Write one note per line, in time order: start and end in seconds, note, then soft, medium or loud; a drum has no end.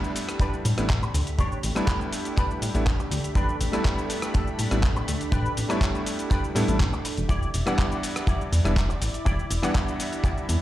0.00 0.74 G3 medium
0.00 0.74 A3 medium
0.00 7.25 A3 medium
0.00 0.75 B3 medium
0.00 0.10 D4 medium
0.00 0.75 D4 medium
0.00 7.25 D4 medium
0.00 0.75 E4 medium
0.00 0.10 G4 medium
0.00 7.25 G4 medium
0.00 0.10 B4 medium
0.00 7.25 B5 medium
0.04 shaker soft
0.16 open hi-hat loud
0.16 shaker medium
0.29 cross-stick medium
0.29 closed hi-hat medium
0.29 shaker soft
0.40 0.53 D4 medium
0.40 0.53 G4 medium
0.40 0.54 B4 medium
0.40 kick loud
0.40 closed hi-hat medium
0.40 shaker soft
0.53 shaker soft
0.65 0.73 A2 medium
0.65 muted clean electric guitar stroke soft
0.65 open hi-hat loud
0.65 shaker medium
0.77 1.08 A1 loud
0.77 0.86 G3 medium
0.77 0.86 A3 medium
0.77 0.86 B3 medium
0.77 0.86 D4 medium
0.77 0.86 E4 medium
0.77 cross-stick medium
0.77 closed hi-hat medium
0.77 shaker soft
0.90 kick loud
0.90 clap loud
0.90 closed hi-hat soft
0.90 shaker soft
1.02 muted clean electric guitar stroke medium
1.02 shaker soft
1.14 1.23 D2 medium
1.14 muted clean electric guitar stroke soft
1.14 open hi-hat loud
1.14 shaker medium
1.27 closed hi-hat medium
1.27 shaker soft
1.39 1.55 A1 medium
1.39 1.57 D4 loud
1.39 1.58 G4 medium
1.39 1.58 C#5 loud
1.39 kick loud
1.39 closed hi-hat medium
1.39 shaker soft
1.52 shaker soft
1.63 1.72 A1 medium
1.63 open hi-hat loud
1.63 shaker medium
1.75 2.71 G3 medium
1.75 2.71 A3 medium
1.75 2.72 B3 medium
1.75 2.07 D4 medium
1.75 2.72 D4 medium
1.75 2.72 E4 medium
1.75 2.07 G4 medium
1.75 2.07 B4 medium
1.75 cross-stick medium
1.75 closed hi-hat medium
1.75 shaker soft
1.87 kick loud
1.87 clap loud
1.87 closed hi-hat medium
1.87 shaker soft
2.01 shaker soft
2.12 open hi-hat loud
2.12 shaker medium
2.25 closed hi-hat medium
2.25 shaker soft
2.37 2.50 D4 medium
2.37 2.50 G4 medium
2.37 2.50 B4 medium
2.37 kick loud
2.37 clap soft
2.37 closed hi-hat medium
2.37 shaker soft
2.51 shaker soft
2.62 2.70 A2 medium
2.62 muted clean electric guitar stroke soft
2.62 open hi-hat loud
2.62 shaker medium
2.74 3.04 A1 loud
2.74 2.83 G3 medium
2.74 2.83 A3 medium
2.74 2.83 B3 medium
2.74 2.83 D4 medium
2.74 2.83 E4 medium
2.74 closed hi-hat medium
2.74 shaker soft
2.87 kick loud
2.87 clap loud
2.87 closed hi-hat soft
2.87 shaker soft
2.99 muted clean electric guitar stroke medium
2.99 shaker soft
3.11 3.19 D2 medium
3.11 muted clean electric guitar stroke soft
3.11 open hi-hat loud
3.11 shaker medium
3.24 closed hi-hat medium
3.24 shaker soft
3.35 3.52 A1 medium
3.35 3.54 D4 loud
3.35 3.55 G4 loud
3.35 3.55 B4 loud
3.35 kick loud
3.35 closed hi-hat soft
3.35 shaker soft
3.49 shaker soft
3.61 3.69 A1 medium
3.61 open hi-hat loud
3.61 shaker medium
3.72 4.68 G3 medium
3.72 4.68 A3 medium
3.72 4.68 B3 medium
3.72 4.04 D4 medium
3.72 4.69 D4 medium
3.72 4.69 E4 medium
3.72 4.04 G4 medium
3.72 4.04 B4 medium
3.72 cross-stick medium
3.72 closed hi-hat medium
3.72 shaker soft
3.85 kick loud
3.85 clap loud
3.85 closed hi-hat soft
3.85 shaker soft
3.98 shaker soft
4.10 open hi-hat loud
4.10 shaker medium
4.22 cross-stick medium
4.22 closed hi-hat medium
4.22 shaker soft
4.34 4.47 D4 medium
4.34 4.47 G4 medium
4.34 4.47 A4 medium
4.34 kick loud
4.34 closed hi-hat soft
4.34 shaker soft
4.47 shaker soft
4.59 4.67 A2 medium
4.59 muted clean electric guitar stroke soft
4.59 open hi-hat loud
4.59 shaker medium
4.71 5.01 A1 loud
4.71 4.79 G3 medium
4.71 4.79 A3 medium
4.71 4.80 B3 medium
4.71 4.80 D4 medium
4.71 4.80 E4 medium
4.71 cross-stick medium
4.71 closed hi-hat medium
4.71 shaker soft
4.83 kick loud
4.83 clap loud
4.83 closed hi-hat soft
4.83 shaker soft
4.96 muted clean electric guitar stroke medium
4.96 shaker soft
5.07 5.16 D2 medium
5.07 muted clean electric guitar stroke soft
5.07 open hi-hat loud
5.07 shaker medium
5.21 closed hi-hat medium
5.21 shaker soft
5.32 5.48 A1 loud
5.32 5.51 D4 loud
5.32 5.51 G4 loud
5.32 5.51 B4 loud
5.32 kick loud
5.32 closed hi-hat soft
5.32 shaker soft
5.46 shaker soft
5.57 5.65 A1 medium
5.57 open hi-hat loud
5.57 shaker medium
5.69 6.53 G3 medium
5.69 6.53 A3 medium
5.69 6.53 B3 medium
5.69 6.00 D4 medium
5.69 6.53 D4 medium
5.69 6.53 E4 medium
5.69 6.00 G4 medium
5.69 6.00 C#5 medium
5.69 cross-stick medium
5.69 closed hi-hat medium
5.69 shaker soft
5.81 kick loud
5.81 clap loud
5.81 closed hi-hat soft
5.81 shaker soft
5.95 shaker soft
6.06 open hi-hat loud
6.06 shaker medium
6.19 closed hi-hat medium
6.19 shaker soft
6.30 6.43 D4 medium
6.30 6.44 G4 medium
6.30 6.44 B4 medium
6.30 kick loud
6.30 clap soft
6.30 closed hi-hat soft
6.30 shaker soft
6.44 shaker soft
6.55 6.64 A2 medium
6.55 6.65 G3 medium
6.55 6.65 A3 medium
6.55 6.65 B3 medium
6.55 6.65 D4 medium
6.55 6.65 E4 loud
6.55 muted clean electric guitar stroke soft
6.55 open hi-hat loud
6.55 shaker medium
6.68 6.80 A1 loud
6.68 6.76 G3 medium
6.68 6.76 A3 medium
6.68 6.76 B3 medium
6.68 6.76 D4 medium
6.68 6.77 E4 medium
6.68 closed hi-hat medium
6.68 shaker soft
6.80 6.88 A1 loud
6.80 kick loud
6.80 clap loud
6.80 closed hi-hat soft
6.80 shaker soft
6.92 muted clean electric guitar stroke medium
6.92 shaker soft
7.04 muted clean electric guitar stroke soft
7.04 open hi-hat loud
7.04 shaker medium
7.17 7.25 E1 medium
7.17 closed hi-hat medium
7.17 shaker soft
7.29 7.45 E1 medium
7.29 7.48 E4 loud
7.29 10.62 E4 medium
7.29 7.48 G4 loud
7.29 10.62 D5 medium
7.29 7.48 D5 loud
7.29 kick loud
7.29 closed hi-hat soft
7.29 shaker soft
7.42 shaker soft
7.54 7.62 E1 medium
7.54 open hi-hat loud
7.54 shaker medium
7.66 8.61 E3 medium
7.66 8.62 G3 medium
7.66 8.62 B3 medium
7.66 8.62 D4 medium
7.66 7.97 E4 medium
7.66 7.97 G4 medium
7.66 7.97 D5 medium
7.66 8.62 F#5 medium
7.66 cross-stick medium
7.66 closed hi-hat medium
7.66 shaker soft
7.78 kick loud
7.78 clap loud
7.78 closed hi-hat soft
7.78 shaker soft
7.92 shaker soft
8.03 open hi-hat loud
8.03 shaker medium
8.16 cross-stick medium
8.16 closed hi-hat medium
8.16 shaker soft
8.27 8.40 E4 medium
8.27 8.40 G4 medium
8.27 8.41 D5 medium
8.27 kick loud
8.27 closed hi-hat medium
8.27 shaker soft
8.41 shaker soft
8.52 8.60 E2 medium
8.52 muted clean electric guitar stroke soft
8.52 open hi-hat loud
8.52 shaker medium
8.64 8.95 E1 loud
8.64 8.73 E3 medium
8.64 8.73 G3 medium
8.64 8.73 B3 medium
8.64 8.73 D4 medium
8.64 8.73 E4 medium
8.64 cross-stick medium
8.64 closed hi-hat medium
8.64 shaker soft
8.76 kick loud
8.76 clap loud
8.76 closed hi-hat soft
8.76 shaker soft
8.89 muted clean electric guitar stroke medium
8.89 shaker soft
9.01 9.09 A1 medium
9.01 muted clean electric guitar stroke soft
9.01 open hi-hat loud
9.01 shaker medium
9.14 closed hi-hat medium
9.14 shaker soft
9.25 9.42 E1 loud
9.25 9.44 E4 loud
9.25 9.44 G4 loud
9.25 9.45 D5 loud
9.25 kick loud
9.25 closed hi-hat soft
9.25 shaker soft
9.39 shaker soft
9.51 9.59 E1 loud
9.51 open hi-hat medium
9.51 shaker medium
9.62 10.58 E3 medium
9.62 10.58 G3 medium
9.62 10.59 B3 medium
9.62 10.59 D4 medium
9.62 9.93 E4 medium
9.62 9.94 G4 medium
9.62 9.94 D5 loud
9.62 10.59 F#5 medium
9.62 cross-stick medium
9.62 closed hi-hat medium
9.62 shaker soft
9.75 kick loud
9.75 clap loud
9.75 closed hi-hat medium
9.75 shaker soft
9.88 shaker soft
10.00 open hi-hat loud
10.00 shaker medium
10.13 closed hi-hat medium
10.13 shaker soft
10.24 10.37 E4 medium
10.24 10.37 G4 medium
10.24 10.37 D5 medium
10.24 kick loud
10.24 clap soft
10.24 closed hi-hat medium
10.24 shaker soft
10.37 shaker soft
10.48 10.57 E2 medium
10.48 muted clean electric guitar stroke soft
10.48 open hi-hat loud
10.48 shaker medium